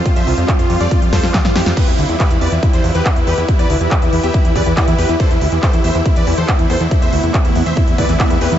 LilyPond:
<<
  \new Staff \with { instrumentName = "Supersaw synth" } { \time 4/4 \key a \minor \tempo 4 = 140 f'16 <c'' e''>16 f'16 f'16 r16 f'16 f'16 <f' d''>16 f'16 f'16 <a' c''>16 f'16 f'16 f'16 <e' g'>16 f'16 | <g' b'>16 e'16 e'16 e'16 <g' b'>16 e'16 <b' d''>16 e'16 e'16 <e' c''>16 e'16 <g' b'>16 e'16 e'16 <g' b'>16 e'16 | e'16 <b' d''>16 e'16 e'16 r16 e'16 e'16 <g' e''>16 e'16 e'16 <b' d''>16 e'16 e'16 e'16 <g' b'>16 e'16 | <a' c''>16 e'16 e'16 e'16 <a' c''>16 e'16 <c'' e''>16 e'16 e'16 <b' d''>16 e'16 <a' c''>16 e'16 e'16 <a' c''>16 e'16 |
e'16 <c'' e''>16 e'16 e'16 r16 e'16 e'16 <c'' e''>16 e'16 e'16 <b' d''>16 e'16 e'16 e'16 <g' b'>16 e'16 | }
  \new Staff \with { instrumentName = "Grand piano" } { \time 4/4 \key a \minor f'16 e''16 f'16 f'16 r16 f'16 f'16 d''16 f'16 f'16 c''16 f'16 f'16 f'16 g'16 f'16 | b'16 e'16 e'16 e'16 b'16 e'16 d''16 e'16 e'16 c''16 e'16 b'16 e'16 e'16 b'16 e'16 | e'16 d''16 e'16 e'16 r16 e'16 e'16 e''16 e'16 e'16 d''16 e'16 e'16 e'16 b'16 e'16 | c''16 e'16 e'16 e'16 c''16 e'16 e''16 e'16 e'16 d''16 e'16 c''16 e'16 e'16 c''16 e'16 |
r16 e''16 e'16 e'16 r16 e'16 e'16 e''16 e'16 e'16 d''16 e'16 e'16 e'16 b'16 e'16 | }
  \new Staff \with { instrumentName = "Ambient pad" } { \time 4/4 \key a \minor <g c' f'>1 | <e e' g' b'>1~ | <e e' g' b'>1 | <c a b>1~ |
<c a b>1 | }
  \new Staff \with { instrumentName = "Analog synth bass" } { \clef bass \time 4/4 \key a \minor r16 f,16 c,16 f,16 r16 f,16 f,16 f,16 r16 f,16 f,16 f,16 r16 g,16 f,16 f,16 | r16 e,16 d,16 e,16 r16 e,16 e,16 e,16 r16 e,16 e,16 e,16 r16 e,16 e,16 e,16 | r16 e,16 d,16 e,16 r16 e,16 e,16 e,16 r16 e,16 e,16 e,16 r16 e,16 e,16 e,16 | r16 e,16 d,16 e,16 r16 e,16 e,16 e,16 r16 e,16 e,16 e,16 r16 e,16 e,16 e,16 |
r16 e,16 d,16 e,16 r16 e,16 e,16 e,16 r16 e,16 e,16 e,16 r16 e,16 e,16 e,16 | }
  \new DrumStaff \with { instrumentName = "Drums" } \drummode { \time 4/4 <hh bd>16 hh16 hho16 hh16 <hc hh bd>16 hh16 hho16 hh16 <hh bd>16 hh16 <hho bd sn>16 <hho sn>16 <hc hh bd sn>16 <hh sn>16 <hho sn>16 <hh sn>16 | <cymc hh bd>16 hh16 hho16 hh16 <hc hh bd>16 hh16 hho16 hh16 <hh bd>16 hh16 hho16 hh16 <hc hh bd>16 hh16 hho16 hh16 | <hh bd>16 hh16 hho16 hh16 <hc hh bd>16 hh16 hho16 hh16 <hh bd>16 hh16 <hho bd>16 hh16 <hc hh bd>16 hh16 hho16 hh16 | <hh bd>16 hh16 hho16 hh16 <hc hh bd>16 hh16 hho16 hh16 <hh bd>16 hh16 hho16 hh16 <hc hh bd>16 hh16 hho16 hh16 |
<hh bd>16 hh16 hho16 hh16 <hc hh bd>16 hh16 hho16 hh16 <hh bd>16 hh16 <hho bd>16 hh16 <hc hh bd>16 hh16 hho16 hh16 | }
>>